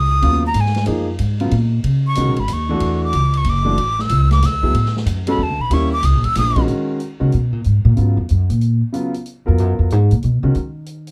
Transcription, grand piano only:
0.22 0.41 C#3 medium
0.22 0.41 F#3 medium
0.22 0.42 B3 medium
0.22 0.42 F4 medium
0.86 1.06 F3 medium
0.86 1.06 A#3 medium
0.86 1.06 D#4 medium
0.86 1.06 G#4 medium
1.40 1.51 C#3 medium
1.40 1.51 F#3 medium
1.40 1.51 B3 medium
1.40 1.51 F4 medium
2.17 2.35 D#3 medium
2.17 2.35 G#3 medium
2.17 2.35 C#4 medium
2.17 2.36 F#4 medium
2.69 3.11 E3 medium
2.69 3.11 A3 medium
2.69 3.11 D4 medium
2.69 3.12 F#4 medium
3.65 3.76 E3 medium
3.65 3.76 A3 medium
3.65 3.76 D4 medium
3.65 3.77 F#4 medium
4.62 4.73 F#3 medium
4.62 4.73 B3 medium
4.62 4.73 E4 medium
4.62 4.74 G#4 medium
5.27 5.38 G#3 medium
5.27 5.38 C#4 medium
5.27 5.38 F#4 medium
5.27 5.38 A4 medium
5.71 5.90 G3 medium
5.71 5.90 A#3 medium
5.71 5.91 C#4 medium
5.71 5.91 E4 medium
6.56 6.98 D#3 medium
6.56 6.98 G#3 medium
6.56 6.98 C#4 medium
6.56 6.98 F#4 medium
7.20 7.31 D#3 medium
7.20 7.31 G#3 soft
7.20 7.31 C#4 medium
7.20 7.31 F#4 medium
7.96 8.15 C#3 soft
7.96 8.15 F#3 soft
7.96 8.16 B3 soft
7.96 8.16 F4 medium
8.93 9.12 C#3 medium
8.93 9.12 F#3 medium
8.93 9.12 B3 medium
8.93 9.12 F4 medium
9.46 9.88 F#3 medium
9.46 9.88 B3 medium
9.46 9.88 F4 medium
9.46 9.88 A#4 medium
10.44 10.54 D#3 medium
10.44 10.54 G#3 medium
10.44 10.54 C#4 medium
10.44 10.54 F#4 medium

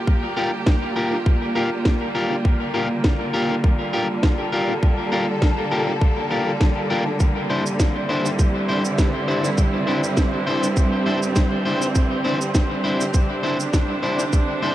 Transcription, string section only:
0.00 14.75 D3 medium
0.00 14.75 G3 medium
0.00 8.51 A#3 medium
0.00 7.20 F4 medium
0.00 4.13 G4 medium
3.93 8.43 A4 medium
7.20 14.75 G2 medium
7.41 14.75 C4 medium
8.14 12.87 E4 medium
8.67 14.75 G4 medium
12.71 14.75 D4 medium

